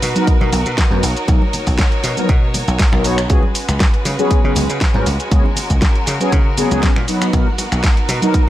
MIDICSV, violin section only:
0, 0, Header, 1, 2, 480
1, 0, Start_track
1, 0, Tempo, 504202
1, 1220, Time_signature, 4, 2, 24, 8
1, 8082, End_track
2, 0, Start_track
2, 0, Title_t, "Violin section"
2, 0, Program_c, 0, 48
2, 0, Note_on_c, 0, 63, 80
2, 0, Note_on_c, 0, 66, 82
2, 0, Note_on_c, 0, 70, 86
2, 0, Note_on_c, 0, 71, 91
2, 963, Note_off_c, 0, 71, 0
2, 985, Note_on_c, 0, 73, 90
2, 3102, Note_off_c, 0, 66, 0
2, 3103, Note_off_c, 0, 70, 0
2, 3104, Note_off_c, 0, 63, 0
2, 3121, Note_off_c, 0, 73, 0
2, 3142, Note_on_c, 0, 56, 85
2, 3143, Note_on_c, 0, 61, 80
2, 3143, Note_on_c, 0, 66, 77
2, 3145, Note_on_c, 0, 71, 91
2, 5044, Note_off_c, 0, 71, 0
2, 5058, Note_on_c, 0, 70, 93
2, 6705, Note_off_c, 0, 56, 0
2, 6706, Note_off_c, 0, 61, 0
2, 6723, Note_off_c, 0, 70, 0
2, 6739, Note_on_c, 0, 63, 79
2, 6739, Note_on_c, 0, 70, 87
2, 6741, Note_on_c, 0, 59, 97
2, 8082, Note_off_c, 0, 59, 0
2, 8082, Note_off_c, 0, 63, 0
2, 8082, Note_off_c, 0, 66, 0
2, 8082, Note_off_c, 0, 70, 0
2, 8082, End_track
0, 0, End_of_file